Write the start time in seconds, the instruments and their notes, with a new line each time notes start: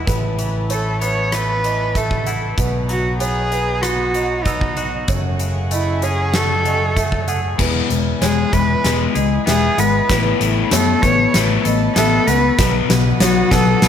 Already playing: clean electric guitar B3, string section E4 B4
0.06 fingered electric bass A1, clean electric guitar A2, felt piano B4, string section A5, kick, closed hi-hat
0.39 clean electric guitar E3, closed hi-hat
0.70 clean electric guitar A3, cello A4, felt piano C#5, closed hi-hat
1.01 clean electric guitar B3, felt piano B4, cello C#5, closed hi-hat
1.32 clean electric guitar A3, cello B4, cross-stick, closed hi-hat
1.64 clean electric guitar E3, felt piano D#5, closed hi-hat
1.95 clean electric guitar A3, cello A4, felt piano E5, kick, closed hi-hat
2.11 kick
2.26 clean electric guitar E4, felt piano F#5, closed hi-hat
2.57 fingered electric bass B1, clean electric guitar B2, string section D#4 F#5, felt piano B4, kick, closed hi-hat
2.89 clean electric guitar F#3, cello F#4, closed hi-hat
3.19 clean electric guitar B3, cello G#4, felt piano C#5, closed hi-hat
3.52 felt piano B4, closed hi-hat
3.81 clean electric guitar B3, cello F#4, cross-stick, closed hi-hat
4.14 clean electric guitar F#3, felt piano D#5, closed hi-hat
4.43 clean electric guitar B3, cello D#4, felt piano E6, kick, closed hi-hat
4.61 kick
4.77 clean electric guitar F#4, felt piano F#5, closed hi-hat
5.08 fingered electric bass F#1, clean electric guitar F#2, string section A3 G#5 C#6, felt piano C#5, kick, closed hi-hat
5.39 clean electric guitar C#3, closed hi-hat
5.71 clean electric guitar A3, cello E4, felt piano D#5, closed hi-hat
6.02 clean electric guitar C#4, cello G#4, felt piano C#5, closed hi-hat
6.34 clean electric guitar A3, cello A4, snare, closed hi-hat
6.65 clean electric guitar F#3, felt piano D#5, closed hi-hat
6.96 clean electric guitar A3, felt piano E5, kick, closed hi-hat
7.12 kick
7.28 clean electric guitar G#4, felt piano F#5, closed hi-hat
7.58 fingered electric bass E1, clean electric guitar E2, distorted electric guitar E3 G#3 B3, string section E4 B4 G#5, felt piano B4, kick, snare, crash
7.90 fingered electric bass E1, distorted electric guitar E3 G#3, closed hi-hat
8.21 fingered electric bass E1, distorted electric guitar E3 G#3, clean electric guitar G#3, cello G#4, felt piano C#5, snare, closed hi-hat
8.53 fingered electric bass E1, distorted electric guitar E3 G#3, clean electric guitar E3, cello B4, felt piano B4, kick, closed hi-hat
8.84 fingered electric bass E1, distorted electric guitar E3 G#3 B3, clean electric guitar G#3, snare, closed hi-hat
9.15 fingered electric bass C#2, distorted electric guitar E3 G#3, clean electric guitar G#4, felt piano D#5, closed hi-hat
9.46 fingered electric bass E1, distorted electric guitar E3 G#3, clean electric guitar B3, cello G#4, felt piano E5, snare, closed hi-hat
9.77 fingered electric bass G#1, distorted electric guitar E3 G#3, clean electric guitar G#3, cello B4, felt piano F#5, closed hi-hat
10.09 fingered electric bass A1, clean electric guitar A2, distorted electric guitar A3 B3 E4, felt piano B4, string section A5, kick, snare, closed hi-hat
10.40 fingered electric bass A1, distorted electric guitar A3 B3 E4, closed hi-hat
10.71 fingered electric bass F#2, clean electric guitar A3, distorted electric guitar A3 B3, cello A4, felt piano C#5, snare, closed hi-hat
11.02 fingered electric bass A1, clean electric guitar E3, distorted electric guitar A3 B3, felt piano B4, cello C#5, kick, closed hi-hat
11.33 fingered electric bass A1, clean electric guitar A3, distorted electric guitar A3 B3 E4, snare, closed hi-hat
11.65 fingered electric bass A1, distorted electric guitar A3 B3, clean electric guitar A4, felt piano D#5, closed hi-hat
11.95 fingered electric bass A1, distorted electric guitar A3 B3, clean electric guitar B3, cello A4, felt piano E5, snare, closed hi-hat
12.27 fingered electric bass C#2, clean electric guitar A3, distorted electric guitar A3 B3, cello B4, felt piano F#5, closed hi-hat
12.58 fingered electric bass B1, clean electric guitar B2, distorted electric guitar B2 F#3 B3, felt piano B4, string section F#5 D#6, kick, snare, closed hi-hat
12.89 fingered electric bass B1, distorted electric guitar B2 F#3, snare, closed hi-hat
13.20 fingered electric bass B1, distorted electric guitar B2 F#3, clean electric guitar B3, cello F#4, felt piano C#5, snare, closed hi-hat
13.51 fingered electric bass B1, distorted electric guitar B2 F#3, clean electric guitar F#3, cello A4, felt piano B4, kick, snare, closed hi-hat
13.82 fingered electric bass B1, distorted electric guitar B2 F#3 B3, clean electric guitar B3, snare, closed hi-hat